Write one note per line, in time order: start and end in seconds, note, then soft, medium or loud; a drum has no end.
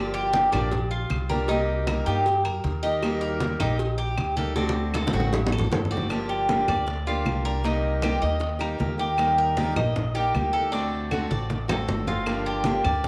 0.00 0.47 G1 medium
0.00 0.32 D3 medium
0.00 0.32 F3 medium
0.00 0.32 A#3 medium
0.00 0.33 D4 medium
0.00 0.33 G4 medium
0.00 0.13 D5 medium
0.14 0.51 G4 medium
0.14 high conga soft
0.33 0.52 F3 medium
0.33 0.52 A#3 medium
0.33 0.52 D4 medium
0.33 0.51 G4 medium
0.33 cowbell medium
0.33 high conga loud
0.52 1.06 A#1 medium
0.52 0.71 F3 medium
0.52 0.71 A#3 medium
0.52 0.90 D4 medium
0.52 0.71 D4 medium
0.52 0.71 G4 medium
0.52 cowbell medium
0.52 high conga soft
0.52 low conga medium
0.52 claves medium
0.71 muted steel-string acoustic guitar stroke medium
0.71 cowbell loud
0.71 high conga soft
0.71 low conga medium
0.91 1.28 F4 medium
0.91 high conga soft
1.10 2.01 C2 medium
1.10 cowbell medium
1.10 high conga medium
1.10 claves medium
1.29 1.49 F3 medium
1.29 1.49 A#3 medium
1.29 1.48 D4 medium
1.29 1.48 G4 medium
1.29 1.48 A#4 medium
1.29 high conga medium
1.48 1.87 C3 medium
1.48 1.86 G3 medium
1.48 1.87 A#3 medium
1.48 1.86 D#4 medium
1.48 1.87 D#4 medium
1.48 1.88 G4 medium
1.48 cowbell loud
1.48 high conga soft
1.69 high conga soft
1.87 2.06 G3 medium
1.87 2.06 A#3 medium
1.87 2.06 D#4 medium
1.87 2.06 G4 medium
1.87 2.06 A#4 medium
1.87 cowbell medium
1.87 high conga medium
1.87 claves medium
2.06 2.42 G2 medium
2.06 2.26 G3 medium
2.06 2.26 A#3 medium
2.06 2.26 D#4 medium
2.06 2.44 G4 medium
2.06 2.25 G4 medium
2.06 cowbell medium
2.06 high conga soft
2.26 muted steel-string acoustic guitar stroke medium
2.26 cowbell loud
2.26 high conga soft
2.45 2.63 F#2 medium
2.45 2.82 A#4 medium
2.45 high conga soft
2.45 claves medium
2.64 3.54 D#2 medium
2.64 cowbell medium
2.64 high conga medium
2.83 3.01 G3 medium
2.83 3.02 A#3 medium
2.83 3.02 D#4 medium
2.83 3.02 G4 medium
2.83 3.20 D#5 medium
2.83 high conga soft
3.02 3.40 D#3 medium
3.02 3.40 G3 medium
3.02 3.40 A#3 medium
3.02 3.41 D#4 medium
3.02 3.41 G4 medium
3.02 cowbell loud
3.02 high conga soft
3.02 claves medium
3.21 3.59 A#4 medium
3.21 high conga soft
3.40 3.59 G3 medium
3.40 3.60 A#3 medium
3.40 3.59 D#4 medium
3.40 3.59 G4 medium
3.40 cowbell medium
3.40 high conga loud
3.60 4.14 A#1 loud
3.60 3.78 G3 medium
3.60 3.79 A#3 medium
3.60 3.97 D#4 loud
3.60 3.79 D#4 medium
3.60 3.79 G4 medium
3.60 cowbell medium
3.60 high conga soft
3.60 low conga medium
3.60 claves medium
3.79 muted steel-string acoustic guitar stroke medium
3.79 cowbell loud
3.79 high conga soft
3.98 4.36 G4 medium
3.98 high conga soft
4.17 5.08 D2 medium
4.17 cowbell medium
4.17 high conga medium
4.17 claves medium
4.36 4.55 G3 medium
4.36 4.56 A#3 medium
4.36 4.56 D#4 medium
4.36 4.55 G4 medium
4.36 4.56 A4 medium
4.36 high conga medium
4.56 4.93 D3 medium
4.56 4.94 A3 medium
4.56 4.94 C4 medium
4.56 4.93 D4 medium
4.56 4.94 F#4 medium
4.56 cowbell loud
4.56 high conga medium
4.69 high conga medium
4.94 5.13 D3 medium
4.94 5.13 A3 medium
4.94 5.14 C4 medium
4.94 5.13 F#4 medium
4.94 5.13 A4 medium
4.94 cowbell medium
4.94 high bongo loud
4.94 high conga loud
4.94 claves medium
5.07 high bongo loud
5.07 high conga loud
5.13 5.68 A1 loud
5.13 5.33 A3 medium
5.13 5.33 C4 medium
5.13 5.51 F#4 medium
5.13 5.32 F#4 medium
5.13 cowbell medium
5.20 high bongo medium
5.20 high conga medium
5.33 muted steel-string acoustic guitar stroke medium
5.33 cowbell loud
5.33 high bongo medium
5.33 low conga medium
5.47 low conga medium
5.52 5.90 A4 medium
5.52 claves medium
5.58 low bongo medium
5.58 low conga loud
5.72 6.62 G1 medium
5.72 cowbell medium
5.72 low bongo medium
5.72 low conga loud
5.85 low conga medium
5.91 6.10 A3 medium
5.91 6.10 C4 medium
5.91 6.09 F#4 medium
5.91 6.10 D5 medium
5.97 low bongo medium
5.97 low conga medium
6.09 6.47 D3 medium
6.09 6.48 F3 medium
6.09 6.48 A#3 medium
6.09 6.48 D4 medium
6.09 6.49 G4 medium
6.09 high bongo medium
6.09 high conga soft
6.09 claves medium
6.29 6.67 G4 medium
6.29 high conga soft
6.48 6.67 D3 medium
6.48 6.67 F3 medium
6.48 6.67 A#3 medium
6.48 6.68 D4 medium
6.48 6.67 G4 medium
6.48 high bongo medium
6.48 high conga loud
6.68 7.22 D2 loud
6.68 6.86 A#3 soft
6.68 6.86 D4 soft
6.68 6.86 G4 medium
6.68 7.05 D5 medium
6.68 high bongo soft
6.68 high conga soft
6.68 low conga medium
6.68 claves medium
6.87 muted steel-string acoustic guitar stroke medium
6.87 high bongo medium
6.87 high conga soft
7.06 7.25 F3 medium
7.06 7.25 A#3 medium
7.06 7.26 D4 medium
7.06 7.44 F4 medium
7.06 7.25 G4 medium
7.06 high bongo soft
7.06 high conga soft
7.26 8.16 C2 medium
7.26 7.44 F3 medium
7.26 7.44 A#3 medium
7.26 7.45 D4 medium
7.26 7.44 G4 medium
7.26 high bongo soft
7.26 low bongo medium
7.26 high conga medium
7.26 claves medium
7.45 7.63 A#3 soft
7.45 7.64 D4 soft
7.45 7.64 G4 soft
7.45 7.64 A#4 medium
7.45 high bongo soft
7.64 8.01 C3 medium
7.64 8.02 G3 medium
7.64 8.02 A#3 medium
7.64 8.02 D#4 medium
7.64 8.02 G4 medium
7.64 high bongo medium
7.64 high conga soft
7.83 high conga soft
8.02 8.21 C3 medium
8.02 8.21 G3 medium
8.02 8.22 A#3 medium
8.02 8.21 D#4 medium
8.02 8.22 G4 medium
8.02 8.20 G4 medium
8.02 high bongo medium
8.02 high conga loud
8.02 claves medium
8.21 8.76 D#2 medium
8.21 8.39 A#3 soft
8.21 8.39 D#4 medium
8.21 8.39 G4 soft
8.21 8.59 D#5 medium
8.21 high bongo soft
8.21 high conga soft
8.40 muted steel-string acoustic guitar stroke medium
8.40 high bongo medium
8.40 high conga soft
8.59 8.77 G3 medium
8.59 8.78 A#3 medium
8.59 8.79 D#4 medium
8.59 8.78 G4 medium
8.59 8.98 A#4 medium
8.59 high bongo soft
8.59 high conga soft
8.59 claves medium
8.78 9.71 D#2 medium
8.78 8.98 G3 medium
8.78 8.98 A#3 medium
8.78 8.98 D#4 medium
8.78 8.97 G4 medium
8.78 high bongo soft
8.78 low bongo medium
8.78 high conga medium
8.98 9.17 A#3 soft
8.98 9.17 D#4 soft
8.98 9.17 G4 medium
8.98 9.37 G4 medium
8.98 high bongo soft
8.98 high conga soft
9.17 9.55 D#3 medium
9.17 9.56 G3 medium
9.17 9.56 A#3 medium
9.17 9.56 D#4 medium
9.17 9.57 G4 medium
9.17 high bongo medium
9.17 high conga soft
9.17 claves medium
9.38 9.75 A#4 medium
9.38 high conga soft
9.57 9.75 D#3 medium
9.57 9.75 G3 medium
9.57 9.76 A#3 medium
9.57 9.76 D#4 medium
9.57 9.75 G4 medium
9.57 high bongo medium
9.57 high conga loud
9.76 10.30 A#1 loud
9.76 9.95 A#3 soft
9.76 9.95 D#4 soft
9.76 9.95 G4 soft
9.76 10.14 D#5 medium
9.76 high bongo soft
9.76 high conga soft
9.76 low conga medium
9.76 claves medium
9.96 muted steel-string acoustic guitar stroke medium
9.96 high bongo medium
9.96 high conga soft
9.96 low conga medium
10.15 10.34 G3 medium
10.15 10.34 A#3 medium
10.15 10.34 D#4 medium
10.15 10.33 G4 medium
10.15 10.52 G4 medium
10.15 high bongo soft
10.15 high conga soft
10.34 11.25 D2 medium
10.34 10.53 G3 medium
10.34 10.53 A#3 medium
10.34 10.54 D#4 medium
10.34 10.53 G4 medium
10.34 high bongo soft
10.34 low bongo medium
10.34 high conga medium
10.34 claves medium
10.53 10.73 A#3 soft
10.53 10.73 D#4 soft
10.53 10.72 G4 soft
10.53 10.72 A4 medium
10.53 high bongo soft
10.72 11.10 D3 medium
10.72 11.11 A3 medium
10.72 11.11 C4 medium
10.72 11.10 D4 medium
10.72 11.11 F#4 medium
10.72 high bongo medium
10.72 high conga soft
10.92 high conga soft
11.11 11.30 D3 medium
11.11 11.30 A3 medium
11.11 11.30 C4 medium
11.11 11.30 F#4 medium
11.11 11.29 F#4 medium
11.11 high bongo medium
11.11 high conga medium
11.11 claves medium
11.31 11.84 A1 loud
11.31 11.49 A3 soft
11.31 11.49 C4 soft
11.31 11.49 F#4 soft
11.31 11.68 D5 medium
11.31 high bongo soft
11.31 high conga medium
11.50 muted steel-string acoustic guitar stroke medium
11.50 high bongo medium
11.50 high conga medium
11.68 11.87 A3 medium
11.68 11.87 C4 medium
11.68 11.87 F#4 medium
11.68 12.07 A4 medium
11.68 high bongo soft
11.68 low conga loud
11.68 claves medium
11.87 12.79 G1 medium
11.87 12.07 D3 soft
11.87 12.07 A3 medium
11.87 12.07 C4 medium
11.87 12.06 F#4 medium
11.87 high bongo soft
11.87 low bongo medium
11.87 low conga medium
12.07 12.26 A3 soft
12.07 12.26 C4 soft
12.07 12.45 F4 medium
12.07 12.26 F#4 soft
12.07 high bongo soft
12.07 low conga medium
12.26 12.63 D3 medium
12.26 12.63 F3 medium
12.26 12.64 A#3 medium
12.26 12.65 D4 medium
12.26 12.65 G4 medium
12.26 high bongo medium
12.26 high conga soft
12.26 claves medium
12.45 12.84 G4 medium
12.45 high conga soft
12.64 12.84 D3 medium
12.64 12.84 F3 medium
12.64 12.84 A#3 medium
12.64 12.84 D4 medium
12.64 12.83 G4 medium
12.64 high bongo medium
12.64 high conga loud
12.84 13.08 D2 loud
12.84 13.04 A#3 soft
12.84 13.04 D4 soft
12.84 13.03 G4 soft
12.84 13.08 D5 medium
12.84 high bongo soft
12.84 high conga soft
12.84 low conga medium
12.84 claves medium
13.04 muted steel-string acoustic guitar stroke medium
13.04 high bongo medium
13.04 high conga soft
13.04 low conga medium